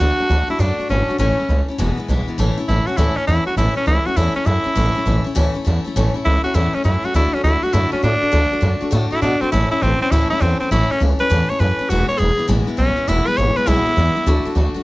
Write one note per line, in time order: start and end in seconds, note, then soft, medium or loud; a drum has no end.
0.00 0.12 D2 medium
0.00 0.19 D3 medium
0.00 0.19 A3 medium
0.00 0.19 D4 medium
0.00 0.49 F#4 loud
0.00 0.17 F#4 medium
0.18 0.29 A3 soft
0.18 0.29 D4 soft
0.18 0.29 F#4 medium
0.18 muted upright bass stroke medium
0.29 0.42 D2 medium
0.29 0.49 D3 medium
0.29 0.49 A3 medium
0.29 0.49 D4 medium
0.29 0.47 F#4 medium
0.48 0.59 A3 soft
0.48 0.59 D4 soft
0.48 0.61 E4 medium
0.48 0.59 F#4 medium
0.48 muted upright bass stroke medium
0.59 0.72 F#2 medium
0.59 0.78 D3 medium
0.59 0.79 A3 medium
0.59 0.89 D4 medium
0.59 0.79 D4 medium
0.59 0.77 F#4 medium
0.78 0.89 A3 soft
0.78 0.90 D4 soft
0.78 0.89 F#4 medium
0.78 muted upright bass stroke medium
0.89 1.02 G#1 medium
0.89 1.08 D3 medium
0.89 1.09 A3 medium
0.89 1.17 C#4 medium
0.89 1.08 D4 medium
0.89 1.07 F#4 medium
1.08 1.18 A3 soft
1.08 1.20 D4 soft
1.08 1.19 F#4 soft
1.08 muted upright bass stroke medium
1.18 1.31 A1 medium
1.18 1.38 A2 medium
1.18 1.38 E3 medium
1.18 1.38 A3 medium
1.18 1.65 C#4 medium
1.18 1.39 C#4 medium
1.18 1.37 E4 medium
1.38 1.49 A3 soft
1.38 1.50 C#4 soft
1.38 1.49 E4 medium
1.38 muted upright bass stroke medium
1.49 1.61 C#2 medium
1.49 1.68 E3 medium
1.49 1.69 A3 medium
1.49 1.69 C#4 medium
1.49 1.67 E4 medium
1.68 1.79 A3 soft
1.68 1.79 C#4 medium
1.68 1.79 E4 medium
1.68 muted upright bass stroke medium
1.78 1.91 E1 medium
1.78 1.98 E2 medium
1.78 1.98 B2 medium
1.78 1.98 E3 medium
1.78 1.98 G#3 loud
1.78 1.97 B3 medium
1.78 1.96 E4 medium
1.97 2.07 E3 soft
1.97 2.08 G#3 medium
1.97 2.09 B3 soft
1.97 2.08 E4 medium
1.97 muted upright bass stroke medium
2.08 2.21 B1 medium
2.08 2.28 E3 medium
2.08 2.28 G#3 medium
2.08 2.27 B3 medium
2.08 2.26 E4 medium
2.27 2.38 E3 soft
2.27 2.38 G#3 soft
2.27 2.39 B3 soft
2.27 2.38 E4 medium
2.27 muted upright bass stroke medium
2.38 2.50 A1 medium
2.38 2.57 A2 medium
2.38 2.58 E3 medium
2.38 2.58 A3 medium
2.38 2.57 C#4 medium
2.38 2.56 E4 loud
2.57 2.68 A3 soft
2.57 2.69 C#4 medium
2.57 2.68 E4 medium
2.57 muted upright bass stroke medium
2.68 2.81 A1 medium
2.68 2.87 E3 medium
2.68 2.88 A3 medium
2.68 2.87 C#4 medium
2.68 2.88 E4 medium
2.68 2.86 E4 medium
2.87 2.97 A3 soft
2.87 2.97 C#4 soft
2.87 2.98 E4 medium
2.87 2.98 F#4 medium
2.87 muted upright bass stroke medium
2.97 3.10 D2 medium
2.97 3.17 A2 medium
2.97 3.17 E3 medium
2.97 3.17 A3 medium
2.97 3.17 C#4 loud
2.97 3.18 E4 medium
2.97 3.16 E4 medium
3.16 3.26 C#4 medium
3.16 3.28 C#4 medium
3.16 3.28 E4 soft
3.16 muted upright bass stroke medium
3.27 3.40 E2 medium
3.27 3.47 E3 medium
3.27 3.47 A3 medium
3.27 3.47 C#4 medium
3.27 3.46 E4 loud
3.27 3.46 E4 medium
3.46 3.57 A3 soft
3.46 3.57 C#4 soft
3.46 3.57 E4 soft
3.46 3.57 F#4 medium
3.46 muted upright bass stroke medium
3.56 3.69 A1 medium
3.56 3.76 A2 medium
3.56 3.77 E3 medium
3.56 3.77 A3 medium
3.56 3.76 C#4 medium
3.56 3.76 E4 medium
3.56 3.75 E4 medium
3.76 3.86 A3 soft
3.76 3.87 C#4 medium
3.76 3.87 C#4 soft
3.76 3.87 E4 soft
3.76 muted upright bass stroke medium
3.86 3.99 C#2 loud
3.86 4.06 E3 medium
3.86 4.06 A3 medium
3.86 4.06 C#4 medium
3.86 4.08 E4 loud
3.86 4.04 E4 medium
4.06 4.16 A3 soft
4.06 4.16 C#4 soft
4.06 4.17 E4 soft
4.06 4.18 F#4 medium
4.06 muted upright bass stroke medium
4.16 4.29 E2 medium
4.16 4.36 A2 medium
4.16 4.36 E3 medium
4.16 4.36 A3 medium
4.16 4.34 C#4 medium
4.16 4.35 E4 medium
4.16 4.33 E4 medium
4.34 4.45 A3 soft
4.34 4.45 C#4 soft
4.34 4.47 C#4 medium
4.34 4.46 E4 medium
4.34 muted upright bass stroke medium
4.45 4.59 F#2 medium
4.45 4.65 E3 medium
4.45 4.65 A3 medium
4.45 4.65 C#4 medium
4.45 5.33 E4 loud
4.45 4.63 E4 medium
4.64 4.75 A3 soft
4.64 4.76 C#4 soft
4.64 4.75 E4 medium
4.64 muted upright bass stroke medium
4.75 4.89 A1 loud
4.75 4.95 A2 medium
4.75 4.95 E3 medium
4.75 4.96 A3 medium
4.75 4.95 C#4 medium
4.75 4.93 E4 medium
4.95 5.05 A3 medium
4.95 5.06 C#4 medium
4.95 5.06 E4 medium
4.95 muted upright bass stroke medium
5.06 5.18 A1 loud
5.06 5.25 E3 medium
5.06 5.25 A3 medium
5.06 5.25 C#4 medium
5.06 5.23 E4 medium
5.24 5.34 A3 soft
5.24 5.35 C#4 medium
5.24 5.35 E4 medium
5.24 muted upright bass stroke medium
5.35 5.49 D2 medium
5.35 5.55 A2 loud
5.35 5.55 E3 loud
5.35 5.55 A3 loud
5.35 5.54 C#4 loud
5.35 5.53 E4 loud
5.54 5.65 A3 medium
5.54 5.66 C#4 medium
5.54 5.65 E4 medium
5.54 muted upright bass stroke medium
5.65 5.79 E2 medium
5.65 5.84 E3 medium
5.65 5.85 A3 medium
5.65 5.85 C#4 medium
5.65 5.83 E4 medium
5.84 5.96 A3 soft
5.84 5.96 C#4 medium
5.84 5.95 E4 medium
5.84 muted upright bass stroke medium
5.96 6.08 A1 medium
5.96 6.15 A2 medium
5.96 6.15 E3 medium
5.96 6.15 A3 medium
5.96 6.14 C#4 medium
5.96 6.13 E4 medium
6.14 6.24 A3 soft
6.14 6.25 C#4 soft
6.14 6.25 E4 medium
6.14 muted upright bass stroke medium
6.25 6.38 C#2 medium
6.25 6.44 E3 medium
6.25 6.45 A3 medium
6.25 6.44 C#4 medium
6.25 6.43 E4 loud
6.25 6.43 E4 medium
6.44 6.53 A3 soft
6.44 6.54 C#4 soft
6.44 6.55 E4 medium
6.44 6.56 F#4 medium
6.44 muted upright bass stroke medium
6.54 6.67 E2 medium
6.54 6.73 A2 medium
6.54 6.74 E3 medium
6.54 6.74 A3 medium
6.54 6.73 C#4 medium
6.54 6.76 E4 medium
6.54 6.72 E4 medium
6.73 6.83 A3 soft
6.73 6.84 C#4 medium
6.73 6.84 C#4 soft
6.73 6.84 E4 medium
6.73 muted upright bass stroke medium
6.84 6.97 F#2 medium
6.84 7.03 E3 medium
6.84 7.04 A3 medium
6.84 7.03 C#4 medium
6.84 7.06 E4 medium
6.84 7.01 E4 medium
7.03 7.13 A3 soft
7.03 7.14 C#4 soft
7.03 7.14 E4 soft
7.03 7.15 F#4 medium
7.03 muted upright bass stroke medium
7.14 7.27 D2 medium
7.14 7.33 D3 medium
7.14 7.34 A3 medium
7.14 7.34 D4 medium
7.14 7.35 E4 medium
7.14 7.32 F#4 medium
7.33 7.44 A3 soft
7.33 7.43 C#4 medium
7.33 7.45 D4 medium
7.33 7.44 F#4 medium
7.33 muted upright bass stroke medium
7.44 7.56 D2 medium
7.44 7.63 D3 medium
7.44 7.64 A3 medium
7.44 7.63 D4 medium
7.44 7.65 E4 loud
7.44 7.61 F#4 medium
7.63 7.72 A3 soft
7.63 7.73 D4 soft
7.63 7.73 F#4 medium
7.63 7.75 F#4 medium
7.63 muted upright bass stroke medium
7.73 7.86 F#2 medium
7.73 7.92 D3 medium
7.73 7.93 A3 medium
7.73 7.92 D4 medium
7.73 7.92 E4 medium
7.73 7.91 F#4 medium
7.92 8.02 A3 soft
7.92 8.03 C#4 medium
7.92 8.03 D4 soft
7.92 8.03 F#4 medium
7.92 muted upright bass stroke medium
8.03 8.16 A2 medium
8.03 8.22 D3 medium
8.03 8.22 A3 medium
8.03 8.90 D4 loud
8.03 8.22 D4 medium
8.03 8.20 F#4 medium
8.21 8.31 A3 soft
8.21 8.31 D4 soft
8.21 8.32 F#4 medium
8.21 muted upright bass stroke medium
8.32 8.45 D2 medium
8.32 8.51 D3 medium
8.32 8.52 A3 medium
8.32 8.51 D4 medium
8.32 8.50 F#4 medium
8.51 8.61 A3 medium
8.51 8.61 D4 medium
8.51 8.62 F#4 medium
8.51 muted upright bass stroke medium
8.61 8.75 F#2 medium
8.61 8.81 D3 medium
8.61 8.81 A3 medium
8.61 8.81 D4 medium
8.61 8.79 F#4 medium
8.81 8.90 A3 soft
8.81 8.91 D4 medium
8.81 8.91 F#4 medium
8.81 muted upright bass stroke medium
8.91 9.05 A2 medium
8.91 9.11 D3 medium
8.91 9.11 A3 medium
8.91 9.11 D4 loud
8.91 9.09 F#4 loud
9.11 9.21 A3 soft
9.11 9.22 D4 medium
9.11 9.21 E4 loud
9.11 9.22 F#4 medium
9.11 muted upright bass stroke medium
9.22 9.34 B2 medium
9.22 9.41 D3 medium
9.22 9.41 A3 medium
9.22 9.42 D4 medium
9.22 9.41 D4 medium
9.22 9.40 F#4 medium
9.41 9.52 A3 soft
9.41 9.51 C4 medium
9.41 9.52 D4 soft
9.41 9.52 F#4 soft
9.41 muted upright bass stroke medium
9.52 9.65 A1 medium
9.52 9.71 A2 medium
9.52 9.71 E3 medium
9.52 9.72 A3 medium
9.52 9.71 C#4 medium
9.52 9.70 E4 medium
9.71 9.82 A3 soft
9.71 9.82 C#4 medium
9.71 9.83 E4 loud
9.71 9.82 E4 soft
9.71 muted upright bass stroke medium
9.82 9.94 A1 loud
9.82 10.01 E3 medium
9.82 10.01 A3 medium
9.82 10.00 C4 loud
9.82 10.01 C#4 medium
9.82 10.00 E4 medium
10.01 10.11 A3 soft
10.01 10.13 C4 loud
10.01 10.12 C#4 medium
10.01 10.11 E4 medium
10.01 muted upright bass stroke medium
10.11 10.24 D2 medium
10.11 10.31 A2 medium
10.11 10.31 E3 medium
10.11 10.31 A3 medium
10.11 10.30 C#4 medium
10.11 10.29 E4 medium
10.11 10.29 E4 loud
10.30 10.40 A3 soft
10.30 10.41 C#4 soft
10.30 10.41 E4 medium
10.30 10.43 E4 loud
10.30 muted upright bass stroke medium
10.40 10.53 E2 medium
10.40 10.60 E3 medium
10.40 10.60 A3 medium
10.40 10.59 C4 loud
10.40 10.60 C#4 medium
10.40 10.59 E4 medium
10.60 10.71 A3 soft
10.60 10.70 C4 medium
10.60 10.71 C#4 soft
10.60 10.71 E4 medium
10.60 muted upright bass stroke medium
10.71 10.83 A1 medium
10.71 10.90 A2 medium
10.71 10.90 E3 medium
10.71 10.90 A3 medium
10.71 10.90 C#4 medium
10.71 10.92 E4 loud
10.71 10.89 E4 medium
10.90 11.00 A3 soft
10.90 11.01 C#4 loud
10.90 11.01 C#4 medium
10.90 11.01 E4 medium
10.90 muted upright bass stroke medium
11.00 11.13 C#2 medium
11.00 11.19 E3 medium
11.00 11.20 A3 medium
11.00 11.19 C#4 medium
11.00 11.18 E4 medium
11.19 11.29 A3 soft
11.19 11.30 C#4 soft
11.19 11.30 E4 medium
11.19 11.51 B4 loud
11.19 muted upright bass stroke medium
11.30 11.43 E2 medium
11.30 11.49 A2 medium
11.30 11.49 E3 medium
11.30 11.49 A3 medium
11.30 11.49 C#4 medium
11.30 11.48 E4 medium
11.49 11.59 A3 soft
11.49 11.60 C#4 medium
11.49 11.60 E4 medium
11.49 11.62 C#5 loud
11.49 muted upright bass stroke medium
11.59 11.72 F#2 medium
11.59 11.79 E3 medium
11.59 11.79 A3 medium
11.59 11.79 C#4 medium
11.59 11.78 E4 medium
11.59 11.91 B4 medium
11.79 11.91 A3 soft
11.79 11.90 C#4 soft
11.79 11.89 E4 medium
11.79 muted upright bass stroke medium
11.89 12.02 E1 medium
11.89 12.09 E2 medium
11.89 12.09 B2 medium
11.89 12.09 E3 medium
11.89 12.09 G#3 medium
11.89 12.08 B3 medium
11.89 12.07 E4 medium
11.89 12.08 F#4 loud
12.08 12.17 E3 soft
12.08 12.18 G#3 soft
12.08 12.19 B3 soft
12.08 12.19 E4 medium
12.08 12.20 C#5 medium
12.08 muted upright bass stroke medium
12.18 12.32 E1 medium
12.18 12.38 E3 medium
12.18 12.38 G#3 medium
12.18 12.37 B3 medium
12.18 12.36 E4 medium
12.18 12.48 G#4 loud
12.37 12.47 E3 soft
12.37 12.48 G#3 soft
12.37 12.48 B3 medium
12.37 12.48 E4 medium
12.37 muted upright bass stroke medium
12.48 12.61 A1 medium
12.48 12.67 E2 medium
12.48 12.68 B2 medium
12.48 12.68 E3 medium
12.48 12.67 G#3 medium
12.48 12.67 B3 medium
12.48 12.66 E4 medium
12.67 12.76 E3 medium
12.67 12.77 G#3 medium
12.67 12.78 B3 medium
12.67 12.78 E4 medium
12.67 muted upright bass stroke medium
12.77 12.90 B1 medium
12.77 12.97 E3 medium
12.77 12.97 G#3 medium
12.77 12.96 B3 medium
12.77 13.09 C#4 loud
12.77 12.95 E4 medium
12.96 13.07 E3 soft
12.96 13.08 G#3 soft
12.96 13.08 B3 soft
12.96 13.07 E4 medium
12.96 muted upright bass stroke medium
13.08 13.20 E1 medium
13.08 13.27 E2 medium
13.08 13.27 B2 medium
13.08 13.27 E3 medium
13.08 13.27 G#3 medium
13.08 13.26 B3 medium
13.08 13.28 E4 medium
13.08 13.25 E4 loud
13.26 13.36 E3 soft
13.26 13.37 G#3 soft
13.26 13.37 B3 soft
13.26 13.37 E4 medium
13.26 13.39 B4 loud
13.26 muted upright bass stroke medium
13.37 13.50 G#1 medium
13.37 13.56 E3 medium
13.37 13.57 G#3 medium
13.37 13.56 B3 medium
13.37 13.55 E4 medium
13.37 13.58 C#5 medium
13.56 13.66 E3 soft
13.56 13.66 G#3 soft
13.56 13.66 B3 medium
13.56 13.67 E4 medium
13.56 13.69 B4 loud
13.56 muted upright bass stroke medium
13.66 13.80 B1 medium
13.66 13.86 E2 medium
13.66 13.86 B2 medium
13.66 13.86 E3 medium
13.66 13.86 G#3 medium
13.66 13.85 B3 loud
13.66 14.54 E4 loud
13.66 13.84 E4 medium
13.85 13.95 E3 soft
13.85 13.96 G#3 soft
13.85 13.97 B3 medium
13.85 13.96 E4 medium
13.85 muted upright bass stroke medium
13.96 14.09 E2 medium
13.96 14.16 E3 medium
13.96 14.16 G#3 medium
13.96 14.15 B3 medium
13.96 14.14 E4 medium
14.15 14.26 E3 medium
14.15 14.27 G#3 medium
14.15 14.27 B3 medium
14.15 14.26 E4 medium
14.15 muted upright bass stroke medium
14.26 14.39 D2 medium
14.26 14.46 D3 medium
14.26 14.46 A3 medium
14.26 14.45 D4 loud
14.26 14.44 F#4 medium
14.45 14.55 A3 medium
14.45 14.55 D4 medium
14.45 14.56 F#4 medium
14.45 muted upright bass stroke medium
14.55 14.68 D2 medium
14.55 14.75 D3 medium
14.55 14.75 A3 medium
14.55 14.75 D4 medium
14.55 14.73 F#4 medium
14.74 14.83 A3 soft
14.74 14.83 D4 medium
14.74 14.83 F#4 medium
14.74 muted upright bass stroke medium